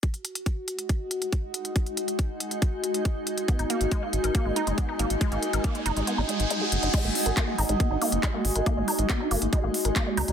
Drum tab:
CC |----------------|----------------|----------------|----------------|
HH |xxxxx-xxx-xxx-xx|xxxxx-xxx-xxx-xx|xxxxx-xxx-xxx-xx|xxxxxxxxx-xxx-xx|
CP |----------------|----------------|----------------|----------------|
BD |o---o---o---o---|o---o---o---o---|o---o---o---o---|o---o-----------|

CC |x---------------|----------------|
HH |x-oxx-oxx-oxx-ox|x-oxx-oxx-oxx-ox|
CP |----x-------x---|----x-------x---|
BD |o---o---o---o---|o---o---o---o---|